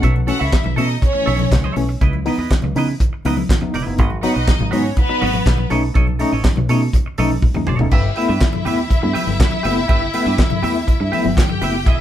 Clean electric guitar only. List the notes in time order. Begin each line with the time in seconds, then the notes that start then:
0.02 A4 C#5 E5
0.15 muted clean electric guitar stroke
0.27 A4 C#5 E5
0.39 A4 C#5 E5
0.64 muted clean electric guitar stroke
0.76 A4 C#5 E5
0.89 muted clean electric guitar stroke
1.02 muted clean electric guitar stroke
1.13 muted clean electric guitar stroke
1.26 A4 C#5 E5
1.39 muted clean electric guitar stroke
1.51 muted clean electric guitar stroke
1.64 A4 C#5 E5
1.76 muted clean electric guitar stroke
1.89 muted clean electric guitar stroke
2.01 E4 B4 D#5
2.14 muted clean electric guitar stroke
2.26 E4 B4 D#5
2.39 E4 B4 D#5
2.64 muted clean electric guitar stroke
2.77 E4 B4 D#5
2.89 muted clean electric guitar stroke
3.00 muted clean electric guitar stroke
3.13 muted clean electric guitar stroke
3.26 E4 B4 D#5
3.38 muted clean electric guitar stroke
3.61 muted clean electric guitar stroke
3.74 E4 B4 D#5
3.86 muted clean electric guitar stroke
3.99 F#4 B4 D#5
4.11 muted clean electric guitar stroke
4.21 F#4 B4 D#5
4.34 F#4 B4 D#5
4.59 muted clean electric guitar stroke
4.71 F#4 B4 D#5
4.84 muted clean electric guitar stroke
4.97 muted clean electric guitar stroke
5.09 muted clean electric guitar stroke
5.21 F#4 B4 D#5
5.35 muted clean electric guitar stroke
5.47 muted clean electric guitar stroke
5.58 muted clean electric guitar stroke
5.70 A4 C#5 D#5
5.83 muted clean electric guitar stroke
5.94 A4 C#5 D#5
6.07 muted clean electric guitar stroke
6.19 A4 C#5 D#5
6.32 A4 C#5 D#5
6.57 muted clean electric guitar stroke
6.69 A4 C#5 D#5
6.82 muted clean electric guitar stroke
6.95 muted clean electric guitar stroke
7.06 muted clean electric guitar stroke
7.18 A4 C#5 D#5
7.31 muted clean electric guitar stroke
7.55 muted clean electric guitar stroke
7.67 A4 C#5 D#5
7.79 muted clean electric guitar stroke
7.92 G4 B4 E5
8.04 muted clean electric guitar stroke
8.15 G4 B4 E5
8.29 G4 B4 E5
8.53 muted clean electric guitar stroke
8.65 G4 B4 E5
8.78 muted clean electric guitar stroke
8.89 muted clean electric guitar stroke
9.02 muted clean electric guitar stroke
9.13 G4 B4 E5
9.28 muted clean electric guitar stroke
9.52 muted clean electric guitar stroke
9.63 G4 B4 E5
9.76 muted clean electric guitar stroke
9.88 G4 B4 E5
10.02 muted clean electric guitar stroke
10.14 G4 B4 E5
10.26 G4 B4 E5
10.50 muted clean electric guitar stroke
10.62 G4 B4 E5
10.76 muted clean electric guitar stroke
10.87 muted clean electric guitar stroke
11.00 muted clean electric guitar stroke
11.12 G4 B4 E5
11.24 muted clean electric guitar stroke
11.50 muted clean electric guitar stroke
11.62 G4 B4 E5
11.75 muted clean electric guitar stroke
11.86 E4 G#4 D#5